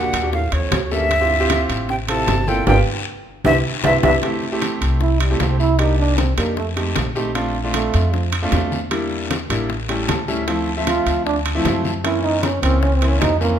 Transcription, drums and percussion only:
0.13 high bongo soft
0.13 high conga soft
0.13 high timbale medium
0.13 short guiro medium
0.32 high bongo medium
0.32 high conga soft
0.32 long guiro medium
0.52 high bongo soft
0.52 high conga soft
0.52 high timbale medium
0.71 high bongo medium
0.71 low bongo medium
0.71 high conga medium
0.71 high timbale medium
0.71 low timbale medium
0.71 short guiro medium
0.91 high conga soft
0.91 short guiro medium
1.10 high bongo medium
1.10 high conga soft
1.10 high timbale medium
1.10 long guiro medium
1.30 high bongo soft
1.30 high conga soft
1.50 high bongo medium
1.50 high conga medium
1.50 high timbale medium
1.50 low timbale medium
1.50 short guiro medium
1.69 high bongo soft
1.69 high conga soft
1.69 high timbale medium
1.69 short guiro medium
1.89 high bongo medium
1.89 high conga soft
1.89 long guiro medium
2.08 high bongo soft
2.08 high conga soft
2.08 high timbale medium
2.27 high bongo medium
2.27 low bongo medium
2.27 high conga medium
2.27 high timbale medium
2.27 low timbale medium
2.27 short guiro medium
2.47 high conga medium
2.47 short guiro medium
2.67 low bongo loud
2.67 high conga medium
2.67 high timbale medium
2.67 long guiro medium
3.45 low bongo medium
3.45 high conga medium
3.45 high timbale medium
3.45 long guiro medium
3.84 low bongo medium
3.84 high conga medium
3.84 high timbale medium
3.84 long guiro medium
4.03 low bongo medium
4.03 high conga medium
4.03 high timbale medium
4.03 long guiro loud
4.23 high bongo medium
4.23 high conga soft
4.23 high timbale medium
4.23 long guiro medium
4.42 high bongo soft
4.42 high conga soft
4.62 high bongo medium
4.62 high conga medium
4.62 high timbale medium
4.62 low timbale medium
4.62 short guiro medium
4.81 high bongo soft
4.81 high conga soft
4.81 high timbale medium
4.81 short guiro medium
5.01 high bongo medium
5.01 high conga soft
5.01 long guiro medium
5.20 high bongo soft
5.20 high conga soft
5.20 high timbale medium
5.40 high bongo medium
5.40 low bongo medium
5.40 high conga medium
5.40 high timbale medium
5.40 low timbale medium
5.40 short guiro medium
5.60 short guiro medium
5.79 high bongo medium
5.79 high conga soft
5.79 high timbale medium
5.79 long guiro medium
5.98 high bongo soft
5.98 high conga soft
6.18 high bongo medium
6.18 high conga medium
6.18 high timbale medium
6.18 low timbale medium
6.18 short guiro medium
6.38 high bongo soft
6.38 high conga soft
6.38 high timbale medium
6.38 short guiro medium
6.57 high bongo medium
6.57 high conga soft
6.57 long guiro medium
6.77 high bongo soft
6.77 high conga soft
6.77 high timbale medium
6.96 high bongo medium
6.96 low bongo medium
6.96 high conga medium
6.96 high timbale medium
6.96 low timbale medium
6.96 short guiro medium
7.16 high conga soft
7.16 short guiro medium
7.35 high bongo medium
7.35 high conga soft
7.35 high timbale medium
7.35 long guiro medium
7.55 high bongo soft
7.55 high conga soft
7.74 high bongo medium
7.74 high conga medium
7.74 high timbale medium
7.74 low timbale medium
7.74 short guiro medium
7.94 high bongo soft
7.94 high conga soft
7.94 high timbale medium
7.94 short guiro medium
8.13 high bongo medium
8.13 high conga soft
8.13 long guiro medium
8.33 high bongo soft
8.33 high conga soft
8.33 high timbale medium
8.52 high bongo medium
8.52 low bongo medium
8.52 high conga medium
8.52 high timbale medium
8.52 low timbale medium
8.52 short guiro medium
8.72 high conga medium
8.72 short guiro medium
8.91 high bongo medium
8.91 high conga soft
8.91 high timbale medium
8.91 long guiro medium
9.11 high bongo soft
9.11 high conga soft
9.31 high bongo medium
9.31 high conga medium
9.31 high timbale medium
9.31 low timbale medium
9.31 short guiro medium
9.50 high bongo soft
9.50 high conga soft
9.50 high timbale medium
9.50 short guiro medium
9.70 high bongo medium
9.70 high conga soft
9.70 long guiro medium
9.89 high bongo soft
9.89 high conga soft
9.89 high timbale medium
10.09 high bongo medium
10.09 low bongo medium
10.09 high conga medium
10.09 high timbale medium
10.09 low timbale medium
10.09 short guiro medium
10.28 high conga soft
10.28 short guiro medium
10.48 high bongo medium
10.48 high conga soft
10.48 high timbale medium
10.48 long guiro medium
10.67 high bongo soft
10.67 high conga soft
10.87 high bongo medium
10.87 high conga medium
10.87 high timbale medium
10.87 low timbale medium
10.87 short guiro medium
11.07 high bongo soft
11.07 high conga soft
11.07 high timbale medium
11.07 short guiro medium
11.26 high bongo medium
11.26 high conga soft
11.26 long guiro medium
11.46 high bongo soft
11.46 high conga soft
11.46 high timbale medium
11.65 high bongo medium
11.65 low bongo medium
11.65 high conga medium
11.65 high timbale medium
11.65 low timbale medium
11.65 short guiro medium
11.85 high conga medium
11.85 short guiro medium
12.04 high bongo medium
12.04 high conga soft
12.04 high timbale medium
12.04 long guiro medium
12.23 high bongo soft
12.23 high conga soft
12.43 high bongo medium
12.43 high conga medium
12.43 high timbale medium
12.43 low timbale medium
12.43 short guiro medium
12.63 high bongo soft
12.63 high conga soft
12.63 high timbale medium
12.63 short guiro medium
12.82 high bongo medium
12.82 high conga soft
12.82 long guiro medium
13.02 high bongo soft
13.02 high conga soft
13.02 high timbale medium
13.21 high bongo medium
13.21 low bongo medium
13.21 high conga medium
13.21 high timbale medium
13.21 low timbale medium
13.21 short guiro medium
13.41 high conga soft
13.41 short guiro medium

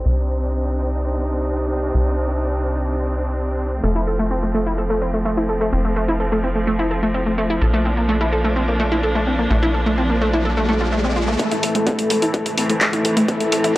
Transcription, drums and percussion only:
11.39 kick loud
11.39 closed hi-hat medium
11.51 closed hi-hat medium
11.63 open hi-hat loud
11.75 closed hi-hat medium
11.87 kick loud
11.87 closed hi-hat medium
11.99 closed hi-hat medium
12.10 open hi-hat loud
12.22 closed hi-hat medium
12.34 kick loud
12.34 closed hi-hat medium
12.46 closed hi-hat medium
12.58 open hi-hat loud
12.70 closed hi-hat medium
12.81 kick loud
12.81 clap loud
12.81 closed hi-hat medium
12.93 closed hi-hat medium
13.05 open hi-hat loud
13.17 closed hi-hat medium
13.28 kick loud
13.28 closed hi-hat medium
13.40 closed hi-hat medium
13.52 open hi-hat loud
13.64 closed hi-hat medium

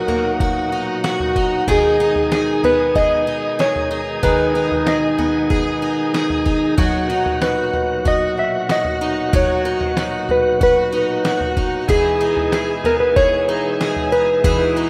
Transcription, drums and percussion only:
0.08 floor tom medium
0.40 kick medium
0.40 floor tom medium
1.04 snare medium
1.20 floor tom medium
1.36 kick medium
1.68 kick medium
1.68 floor tom loud
2.16 floor tom medium
2.32 snare loud
2.64 floor tom medium
2.95 kick medium
2.95 floor tom medium
3.60 snare medium
3.76 floor tom medium
4.23 kick medium
4.23 floor tom medium
4.71 floor tom medium
4.87 snare loud
5.19 floor tom medium
5.50 kick medium
5.50 floor tom medium
6.14 snare medium
6.30 floor tom medium
6.46 kick medium
6.78 kick loud
6.78 floor tom medium
7.26 floor tom medium
7.42 snare loud
7.73 floor tom medium
8.05 kick medium
8.05 floor tom medium
8.69 snare medium
8.85 floor tom medium
9.33 kick loud
9.33 floor tom loud
9.81 floor tom medium
9.97 snare loud
10.29 floor tom medium
10.61 kick medium
10.61 floor tom medium
11.25 snare medium
11.41 floor tom medium
11.57 kick medium
11.89 kick loud
11.89 floor tom medium
12.37 floor tom medium
12.52 snare medium
12.84 floor tom medium
13.16 kick loud
13.16 floor tom medium
13.81 snare medium
13.96 floor tom medium
14.44 kick loud
14.44 floor tom loud

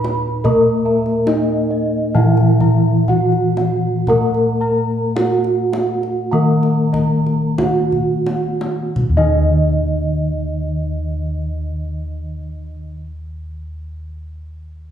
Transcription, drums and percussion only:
0.04 kendang high soft
0.45 kendang low medium
1.06 kendang slap soft
1.27 kendang high medium
2.37 kendang slap soft
2.60 kendang low medium
3.08 kendang low soft
3.32 kendang slap soft
3.57 kendang high soft
4.07 kendang low medium
4.34 kendang slap soft
5.16 kendang high medium
5.44 kendang slap soft
5.73 kendang high soft
6.03 kendang slap soft
6.63 kendang slap soft
6.94 kendang low medium
7.27 kendang slap soft
7.58 kendang high medium
7.58 kendang low medium
7.92 kendang low soft
8.26 kendang high medium
8.61 kendang high medium
8.96 kendang low medium

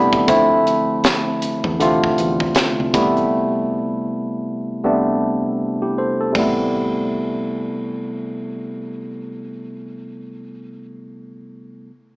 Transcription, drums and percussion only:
0.13 kick medium
0.13 closed hi-hat soft
0.28 kick medium
0.28 closed hi-hat medium
0.67 closed hi-hat soft
1.04 snare loud
1.04 closed hi-hat medium
1.42 closed hi-hat medium
1.64 kick medium
1.80 closed hi-hat medium
2.04 kick medium
2.18 closed hi-hat medium
2.40 kick medium
2.55 snare medium
2.55 closed hi-hat medium
2.94 kick medium
2.94 closed hi-hat medium
3.17 closed hi-hat soft
6.35 kick medium
6.35 ride medium

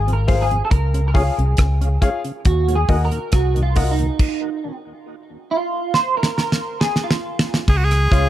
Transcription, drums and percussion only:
0.08 closed hi-hat soft
0.28 kick medium
0.28 open hi-hat medium
0.51 closed hi-hat soft
0.71 kick loud
0.71 closed hi-hat medium
0.94 closed hi-hat medium
1.15 kick loud
1.15 open hi-hat medium
1.39 closed hi-hat soft
1.57 kick loud
1.57 cross-stick loud
1.57 closed hi-hat medium
1.82 closed hi-hat medium
2.02 kick medium
2.02 closed hi-hat medium
2.25 closed hi-hat soft
2.45 kick loud
2.45 closed hi-hat medium
2.68 closed hi-hat medium
2.88 kick medium
2.88 open hi-hat soft
3.11 closed hi-hat soft
3.32 kick loud
3.32 cross-stick loud
3.32 closed hi-hat medium
3.56 closed hi-hat soft
3.76 kick medium
3.76 open hi-hat medium
3.99 closed hi-hat soft
4.19 kick loud
4.19 crash loud
5.94 snare medium
6.23 snare medium
6.38 snare medium
6.52 snare medium
6.81 snare medium
6.96 snare medium
7.11 snare loud
7.39 snare loud
7.54 snare medium
7.68 kick loud
7.68 crash medium
7.91 cross-stick medium
7.91 closed hi-hat medium
8.12 kick loud
8.12 closed hi-hat medium

